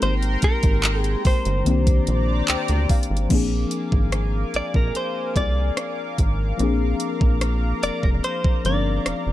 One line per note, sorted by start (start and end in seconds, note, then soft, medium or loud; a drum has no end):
0.00 0.37 G#1 loud
0.00 1.61 G#3 medium
0.00 1.62 A#3 medium
0.00 1.63 C4 medium
0.00 1.63 D#4 medium
0.00 1.64 G4 medium
0.00 1.64 A#4 medium
0.00 0.14 C5 loud
0.00 1.64 G5 medium
0.00 1.64 A#5 medium
0.00 1.64 C6 medium
0.00 closed hi-hat medium
0.23 closed hi-hat soft
0.42 1.00 A#4 medium
0.42 kick loud
0.42 closed hi-hat medium
0.63 1.16 G#1 medium
0.63 kick loud
0.63 closed hi-hat medium
0.83 clap loud
0.83 closed hi-hat medium
1.00 1.22 G#4 medium
1.00 closed hi-hat soft
1.25 1.34 G1 medium
1.25 2.86 C5 medium
1.25 kick loud
1.25 open hi-hat medium
1.45 1.63 G1 medium
1.45 closed hi-hat soft
1.64 2.01 C2 loud
1.64 3.26 D#3 medium
1.64 3.27 A#3 medium
1.64 3.28 C4 medium
1.64 3.29 C5 medium
1.64 3.29 D5 medium
1.64 3.29 A#5 medium
1.64 3.29 D6 medium
1.64 closed hi-hat medium
1.69 3.28 D4 medium
1.69 3.29 G4 medium
1.87 kick medium
1.87 closed hi-hat medium
2.07 2.43 A#1 loud
2.07 closed hi-hat medium
2.48 2.57 D2 soft
2.48 2.87 G5 medium
2.48 clap loud
2.48 closed hi-hat medium
2.68 2.87 D2 medium
2.68 closed hi-hat medium
2.89 3.28 F5 medium
2.89 kick medium
2.89 closed hi-hat medium
2.89 open hi-hat medium
3.03 closed hi-hat medium
3.11 3.28 G#1 medium
3.17 closed hi-hat medium
3.29 3.66 A#1 loud
3.29 6.54 F3 medium
3.29 6.55 A#3 medium
3.29 6.56 C4 medium
3.29 9.33 A#4 medium
3.29 9.33 F5 medium
3.29 6.56 G#5 medium
3.29 9.33 D6 medium
3.29 kick loud
3.29 closed hi-hat medium
3.29 crash medium
3.33 6.57 D4 medium
3.33 6.57 G#4 medium
3.71 closed hi-hat medium
3.92 4.45 G#1 medium
3.92 kick loud
4.12 cross-stick loud
4.12 closed hi-hat medium
4.54 4.62 A#1 soft
4.54 4.76 D5 medium
4.54 closed hi-hat medium
4.74 4.92 A#1 medium
4.74 4.96 A#4 medium
4.74 kick medium
4.95 5.34 C5 medium
4.95 closed hi-hat medium
5.36 5.71 C2 loud
5.36 6.15 D5 medium
5.36 kick medium
5.36 closed hi-hat medium
5.77 cross-stick loud
5.77 closed hi-hat medium
6.18 6.54 G#1 medium
6.18 kick medium
6.18 closed hi-hat medium
6.57 6.95 A#1 loud
6.57 8.60 F3 medium
6.57 8.61 A#3 medium
6.57 8.61 C4 medium
6.57 9.33 A#5 medium
6.57 closed hi-hat medium
6.62 8.62 D4 medium
6.62 8.63 G#4 medium
7.00 closed hi-hat medium
7.21 7.74 A#1 medium
7.21 kick loud
7.41 cross-stick loud
7.41 closed hi-hat medium
7.83 7.91 F1 soft
7.83 8.04 D5 medium
7.83 closed hi-hat medium
8.03 8.21 F1 medium
8.03 8.09 A#4 medium
8.03 kick medium
8.24 8.65 C5 medium
8.24 closed hi-hat medium
8.44 kick loud
8.64 9.00 G1 medium
8.64 9.33 F3 soft
8.64 9.33 A#3 soft
8.64 9.33 C4 soft
8.64 8.72 C#4 soft
8.64 9.33 A#4 medium
8.64 9.33 D5 medium
8.64 closed hi-hat medium
8.73 9.33 D4 soft
9.06 9.14 F1 soft
9.06 cross-stick loud
9.06 closed hi-hat medium
9.27 9.33 F1 medium